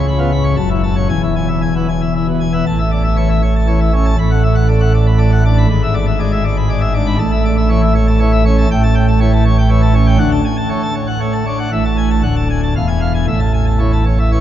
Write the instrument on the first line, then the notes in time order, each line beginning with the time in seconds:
pipe organ
Already playing: C#2 C#3
0.08 B5
0.19 B3 F4
0.31 B5
0.44 C#5
0.57 F#1 F#2 A5
0.70 E4
0.83 A5
0.96 C#5
1.09 E1 E2 G#5
1.23 E4
1.36 G#5
1.49 E5
1.62 G#5
1.75 B3 E4
1.88 G#5
2.02 E5
2.14 E4
2.27 B2
2.40 G#5
2.53 B3 E5
2.66 A1 A2 A5
2.79 E5
2.91 D5
3.04 E5
3.17 E3 C#5
3.30 E5
3.42 C#5
3.56 A5
3.68 E3 C#5
3.81 E5
3.94 C#4 C#5
4.05 A5
4.18 A1 A2 B5
4.31 F#5
4.43 E5
4.55 F#5
4.68 A3 D5
4.81 F#5
4.94 D5
5.06 B5
5.18 A3 D5
5.32 F#5
5.45 D4 D5
5.57 B5
5.70 G#1 G#2 B5
5.83 E5
5.94 D5
6.07 E5
6.19 G#3 D5
6.32 E5
6.44 D5
6.57 B5
6.69 G#3 D5
6.81 E5
6.94 D4 D5
7.06 B5
7.19 A1 A2 A5
7.32 E5
7.45 D5
7.57 E5
7.70 E3 C#5
7.81 E5
7.95 C#5
8.08 A5
8.20 E3 C#5
8.32 E5
8.45 C#4 C#5
8.58 A5
8.71 A1 A2 G5
8.83 A5
8.95 G5
9.08 A5
9.20 E3 C#5
9.33 A5
9.45 C#5
9.58 G5
9.69 E3 C#5
9.82 A5
9.95 C#4 C#5
10.07 G5
10.18 D2 D3 F#5
10.32 A5
10.44 G#5
10.57 A5
10.69 A3 C#5
10.82 A5
10.95 C#5
11.07 F#5
11.20 A3 C#5
11.33 A5
11.46 D4 C#5
11.59 F#5
11.72 A1 A2 E5
11.85 A5
11.97 G#5
12.11 A5
12.23 D1 D2 F#5
12.36 A5
12.50 G#5
12.63 A5
12.76 E1 E2 F5
12.88 G#5
13.01 F5
13.14 G#5
13.28 A1 A2 E5
13.40 A5
13.54 G#5
13.67 A5
13.80 E3 C#5
13.93 A5
14.07 C#5
14.19 E5
14.32 E3 C#5